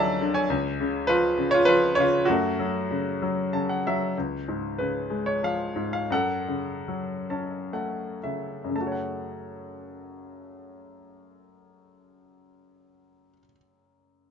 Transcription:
Already playing: D2 D3 F#3 F#4 G#4 D5 E5 A5
0.21 D3
0.34 C#5 G#5
0.50 C#2
0.81 C#3
1.07 F3 F4 B4
1.38 C#3
1.51 F4 C#5
1.65 F3 F4 B4
1.95 C#3 C#5
2.00 F4
2.25 F#2 F#4
2.31 A3
2.60 F#3
2.91 C#3
3.22 F#3
3.53 C#3 A5
3.69 F#5
3.87 F#3 E5
4.18 C#2
4.48 G#2
4.78 C#3 B4
5.10 G#3
5.26 C#5
5.43 F3 F5
5.76 G#2
5.93 F5
6.10 F#2 A4 F#5
6.48 C#3
6.88 F#3
7.30 C#4 A5
7.73 A3 F#5
8.23 C#3 E5
8.64 F#2
8.69 C#3
8.75 A3 A5
8.81 F#4
8.87 C#5
8.92 F#5

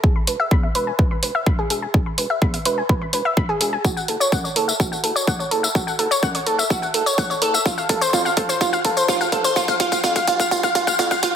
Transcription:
0.04 E1 G#4, kick
0.16 B5
0.27 E1 B4, open hi-hat
0.40 E5
0.51 E2 B5, kick
0.63 E5
0.75 E1 B4, open hi-hat
0.87 G#5
0.99 E1 B4, kick
1.11 B5
1.23 E1 B4, open hi-hat
1.35 E5
1.46 E1 B5, kick
1.59 G#4
1.70 E1 G#4, open hi-hat
1.82 G#5
1.94 E1 G#4, kick
2.06 B5
2.18 E1 B4, open hi-hat
2.30 E5
2.42 E2 B5, kick
2.54 E5, open hi-hat
2.65 E1 B4, open hi-hat
2.78 G#5
2.89 E1 B4, kick
3.02 B5
3.13 E1 B4, open hi-hat
3.25 E5
3.37 E1 B5, kick
3.49 G#4
3.61 E1 G#4, open hi-hat
3.73 G#5
3.85 F#1 F#4, kick, tambourine
3.97 F#5, tambourine
4.08 F#1 A4, open hi-hat
4.20 C#5, tambourine
4.32 F#2 F#5, kick, tambourine
4.44 C#5, tambourine
4.56 F#1 A4, open hi-hat
4.68 E5, tambourine
4.80 F#1 F#4, kick, tambourine
4.92 F#5, tambourine
5.04 F#1 A4, open hi-hat
5.16 C#5, tambourine
5.27 F#1 F#5, kick, tambourine
5.39 C#5, tambourine
5.51 F#1 A4, open hi-hat
5.63 E5, tambourine
5.75 F#1 F#4, kick, tambourine
5.87 F#5, tambourine
5.99 F#1 A4, open hi-hat
6.11 C#5, tambourine
6.23 F#2 F#5, kick, tambourine
6.35 C#5, open hi-hat, tambourine
6.46 F#1 A4, open hi-hat
6.59 E5, tambourine
6.70 F#1 F#4, kick, tambourine
6.82 F#5, tambourine
6.94 F#1 A4, open hi-hat
7.06 C#5, tambourine
7.18 F#1 F#5, kick, tambourine
7.30 C#5, tambourine
7.42 F#1 A4, open hi-hat
7.54 E5, tambourine
7.66 F1 F4, kick, tambourine
7.78 F5, tambourine
7.89 F1 A4, kick, open hi-hat
8.01 C5, tambourine
8.13 F2 F4, kick, tambourine
8.25 F5, tambourine
8.37 F1 A4, kick, open hi-hat
8.49 C5, tambourine
8.61 F1 F4, kick, tambourine
8.73 F5, tambourine
8.85 F1 A4, kick, open hi-hat
8.97 C5, tambourine
9.08 F1 F4, kick, tambourine
9.21 F5, tambourine
9.32 F1 A4, kick, open hi-hat
9.44 C5, tambourine
9.56 F1 F4, kick, tambourine
9.68 F5, kick, tambourine
9.80 F1 F4, kick, open hi-hat
9.92 F5, kick, tambourine
10.04 F2 F4, kick, tambourine
10.16 F5, kick, open hi-hat, tambourine
10.27 F1 F4, kick, open hi-hat
10.40 F5, kick, tambourine
10.51 F1 F4, kick, tambourine
10.63 F5, kick, tambourine
10.75 F1 F4, kick, open hi-hat
10.87 F5, kick, tambourine
10.99 F2 F4, kick, tambourine
11.11 F5, kick, tambourine
11.23 F1 F4, kick, open hi-hat

